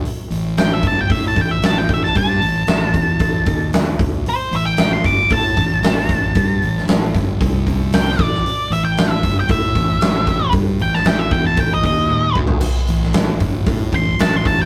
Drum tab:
CC |----------------|----------------|----------------|----------------|
HH |o-o-o-o-o-o-o-o-|o-o-o-o-o-o-o-o-|o-o-o-o-o-o-o-o-|o-o-o-o-o-o-o-o-|
SD |----o-------o--o|----o-------o---|----o-------o---|---oo-------o--o|
T1 |----------------|----------------|----------------|----------------|
FT |----------------|----------------|----------------|----------------|
BD |------o-o-o---o-|o-----o-o-o---o-|------o-o-o---o-|o-----o-o-o---o-|

CC |----------------|----------------|x---------------|
HH |o-o-o-o-o-o-o-o-|o-o-o-o-o-o-----|o-o-o-o-o-o-o-o-|
SD |----o-------o---|---oo-----------|---oo-------o---|
T1 |----------------|------------o---|----------------|
FT |----------------|---------------o|----------------|
BD |------o-o-o---o-|o-----o-o-o---o-|------o-o-o---o-|